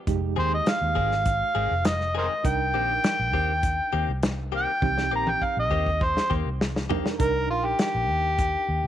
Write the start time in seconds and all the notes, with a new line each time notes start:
0.07 F1 G#3 D#4 G4, kick, closed hi-hat
0.36 D#2 D#3 G#3 C4 G#4 C5
0.54 D#5
0.66 F5, snare, closed hi-hat
0.81 D#2
0.95 G#1 D#3 G#3 C4 G#4, kick
1.11 snare
1.25 kick, closed hi-hat
1.55 G#1 D#3 G#3 C4 G#4
1.71 F1
1.85 D#5, snare, closed hi-hat
2.00 snare
2.15 D#3 G#3 C4 G#4 A#4 C5 D#5
2.44 C2 D4 D#4 A#4 G5, kick, closed hi-hat
2.74 A#1 D#3 A#3 C4 G4
3.04 snare, closed hi-hat
3.19 A#1
3.34 D#2 D#3 A#3 C4 G4, kick
3.63 kick, closed hi-hat
3.93 D#2 D#3 A#3 C4 G4
4.08 C2
4.23 snare, closed hi-hat
4.52 D#3 A#3 C4 G4
4.56 G5
4.82 C2 C4 D#4 G4, kick, high tom
4.98 snare
5.11 A#1 D#3 A#3 C4 G4
5.16 A#5
5.27 G5, high tom
5.42 F5, kick
5.57 A#1 D#5
5.71 D#2 D#3 A#3 C4 G4, kick
5.86 kick
6.01 C5, kick
6.17 snare
6.30 D#2 D#3 A#3 C4 G4, kick
6.46 C2
6.61 snare
6.76 snare
6.90 D#3 A#3 C4 D4 D#4 G4 A#4, floor tom
7.06 snare
7.19 C2 D4 D#4 A#4, kick, closed hi-hat
7.50 A#1 F4
7.66 G4
7.79 G4, snare, closed hi-hat
7.95 A#1
8.10 D#2
8.39 kick, closed hi-hat
8.69 D#2
8.84 C2